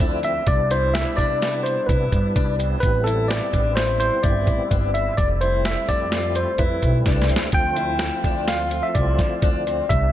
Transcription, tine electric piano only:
0.25 E5
0.48 D5
0.71 C5
0.94 E5
1.17 D5
1.63 C5
1.86 B4
2.80 B4
3.04 A4
3.28 D5
3.76 C5
4.00 C5
4.23 D5
4.94 E5
5.17 D5
5.41 C5
5.65 E5
5.89 D5
6.36 C5
6.59 B4
7.54 G5
8.48 F5
8.83 E5
8.95 D5
9.89 E5

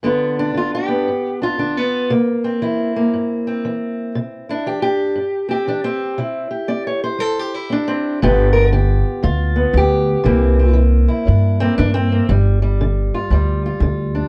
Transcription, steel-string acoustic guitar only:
0.03 G2 D3 B3 D4 F4
0.39 D4
0.54 D3 F4
0.75 G4
0.89 B3
1.08 G2
1.42 D4 F4
1.58 D3 D4
1.77 B3
2.10 C3 A#3
2.44 C4
2.62 E3 E4
2.96 A#3
3.14 G2
3.47 C4
3.65 E3
4.15 C3
4.49 D4 E4
4.66 E3 G4
4.82 G4
5.16 G2
5.49 C4 G4
5.67 E3 D4
5.84 C4
6.18 C3 E4
6.51 G4
6.68 C4 D5
6.87 C#5
7.04 C5
7.18 G3 A4
7.39 G4
7.54 E4
7.70 C4 D4
7.88 C4
8.22 G2 D3 B3 F4 G4
8.53 A#4
8.72 D3 G4
9.23 D3 F4
9.56 B3
9.73 D3
9.77 G4
10.24 C3 E3 A#3 C4
10.59 C4
10.73 E3
11.08 E4
11.27 G2 D4
11.60 A#3 C4
11.78 E3 D4
11.94 C4
12.12 A#3
12.29 G2 G3
12.62 G3
12.81 D3
13.14 F4
13.31 G2 G3
13.66 F4
13.82 D3
14.15 D4

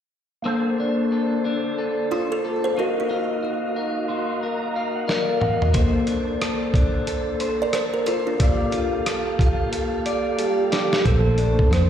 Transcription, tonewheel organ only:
0.42 A#3 D4 A4
0.48 C5
2.74 A#3 F#4 F5
2.79 D#5
4.08 C6
4.41 A#5
4.95 F#5
5.08 F#4 D5 D#5
5.28 A4 F5
5.41 A#4 D#5 F#5
5.62 F#4 D#5
5.72 A#3 D4 A4
5.77 C5
8.37 A#3 G4 A4
8.43 F5
11.03 A#3 D4 A4 C5

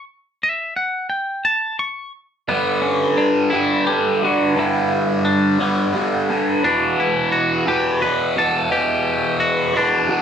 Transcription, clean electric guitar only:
0.43 E5
0.76 F#5
1.10 G5
1.45 A5
1.79 C#6
2.49 B3
2.82 C#4
3.17 D4
3.50 E4
3.87 G4
4.25 F#4
4.59 E4
5.25 D4
5.60 B3
6.64 D4
7.00 E4
7.32 F#4
7.68 G4
8.02 B4
8.38 A4
8.72 G4
9.40 F#4
9.77 D4

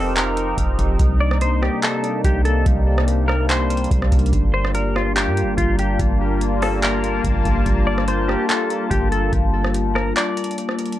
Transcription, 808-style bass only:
Already playing: F1
0.58 F1
0.79 F1
1.00 C2
2.24 C2
2.66 C2
3.91 C2
4.12 C2
4.33 G1
5.27 G2
5.42 G1
5.58 G1
5.99 G1
7.24 G1
7.45 G1
7.66 G1
8.91 G1
9.33 G1

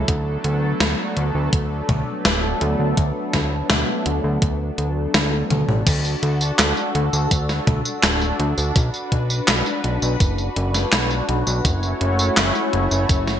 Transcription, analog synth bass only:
0.08 D2
0.44 D2
0.80 D2
1.17 D2
1.35 D2
1.53 D2
1.89 D2
2.25 D1
2.61 D2
2.79 D2
2.97 D2
3.33 D2
3.70 D2
4.06 D2
4.24 D2
4.42 D2
4.78 D2
5.14 D2
5.50 D2
5.68 A1
5.87 D2
6.23 D2
6.59 D2
6.95 D2
7.13 D2
7.31 D2
7.67 D2
8.03 D1
8.40 D2
8.58 D2
8.76 B1
9.12 B1
9.48 B1
9.84 B1
10.02 B1
10.20 F#1
10.56 F#1
10.93 B1
11.29 B1
11.47 B1
11.65 F#1
12.01 F#1
12.37 F#1
12.73 F#1
12.91 F#1
13.09 F#1

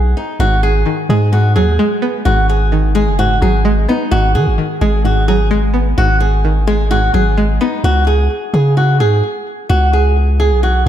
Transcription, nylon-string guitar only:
Already playing: G#4
0.17 D#4
0.40 F#4
0.63 G#4
1.10 G#4
1.33 F#4
1.56 G#4
2.25 F#4
2.49 G#4
2.95 G#4
3.19 F#4
3.42 G#4
3.89 D#4
4.11 F#4
4.35 G#4
4.81 G#4
5.05 F#4
5.28 G#4
5.98 F#4
6.20 G#4
6.67 G#4
6.91 F#4
7.14 G#4
7.61 D#4
7.84 F#4
8.07 G#4
8.54 G#4
8.77 F#4
9.00 G#4
9.69 F#4
9.93 G#4
10.40 G#4
10.63 F#4

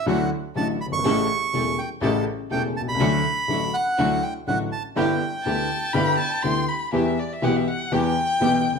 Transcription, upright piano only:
0.06 D2 D3 F#3 A3 E4
0.55 A1 A2 D3 F#3 A3 E4
0.86 F#1
0.92 G1
0.99 G#1
1.05 A1 A2 C#3 G3 A3 E4
1.53 E1 E2 C#3 G3 A3 E4
2.01 A1 A2 C#3 G3 A3 E4
2.51 E1 E2 C#3 G3 A3 E4
2.81 B1
2.88 C2
2.95 C#2
3.00 D2 D3 F#3 A3 E4
3.48 A1 A2 D3 F#3 A3 E4
3.99 D2 D3 F#3 A3 E4
4.47 A1 A2 D3 F#3 A3 E4
4.96 G1 G2 D3 G3 B3 E4
5.46 D2 D3 G3 B3 E4
5.94 G1 G2 D3 G3 B3 E4
6.44 D2 D3 G3 B3 E4
6.93 E2 E3 G3 B3 G4
7.42 B1 B2 E3 G3 B3 G4
7.92 E2 E3 G3 B3 G4
8.41 B1 B2 E3 G3 B3 G4
8.72 F#1

